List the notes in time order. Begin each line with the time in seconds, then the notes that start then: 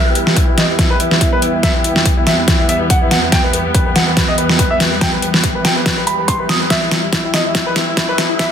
Already playing: E2 E3 G3 B3 G4 B4 E5 G5
0.06 E4
0.15 E4, closed hi-hat
0.27 snare
0.36 E4, kick, closed hi-hat
0.48 E4
0.57 D#5, snare, closed hi-hat
0.69 E4
0.79 E4, kick, snare, closed hi-hat
0.90 B4
1.00 E4, closed hi-hat
1.11 E4, snare
1.21 E4, kick, closed hi-hat
1.32 B4
1.42 E4, closed hi-hat
1.54 E4
1.63 E5, kick, snare, closed hi-hat
1.75 E4
1.84 E4, closed hi-hat
1.96 E4, snare
2.06 kick, closed hi-hat
2.17 E4
2.27 E5, snare, closed hi-hat
2.38 E4
2.48 E4, kick, snare, closed hi-hat
2.59 E4
2.69 E5, closed hi-hat
2.80 E4
2.90 F#5, kick, closed hi-hat
3.02 E4
3.11 F#5, snare, closed hi-hat
3.23 E4
3.32 G5, kick, snare, closed hi-hat
3.44 B4
3.53 B4, closed hi-hat
3.75 B4, kick, closed hi-hat
3.86 B4
3.96 F#5, snare, closed hi-hat
4.07 B4
4.17 B4, kick, snare, closed hi-hat
4.28 D#5
4.38 B4, closed hi-hat
4.49 B4, snare
4.59 B4, kick, closed hi-hat
4.71 E5
4.80 B4, snare, closed hi-hat
4.92 B4
5.01 G5, kick, snare, closed hi-hat
5.13 B4
5.22 B4, closed hi-hat
5.34 B4, snare
5.44 kick, closed hi-hat
5.55 B4
5.65 G5, snare, closed hi-hat
5.76 B4
5.86 B4, kick, snare, closed hi-hat
5.97 B4
6.07 B5, closed hi-hat
6.18 B4
6.28 C6, kick, closed hi-hat
6.39 B4
6.49 D#6, snare, closed hi-hat
6.61 B4
6.70 E4 E5, kick, snare, closed hi-hat, riser
6.82 E4
6.91 snare, closed hi-hat
7.13 E4, kick, snare, closed hi-hat
7.24 E4
7.34 D#5, snare, closed hi-hat
7.45 E4
7.55 E4, kick, snare, closed hi-hat
7.66 B4
7.76 E4, snare, closed hi-hat
7.88 E4
7.97 E4, kick, snare, closed hi-hat
8.09 B4
8.18 E4, snare, closed hi-hat
8.30 E4
8.39 E5, kick, snare, closed hi-hat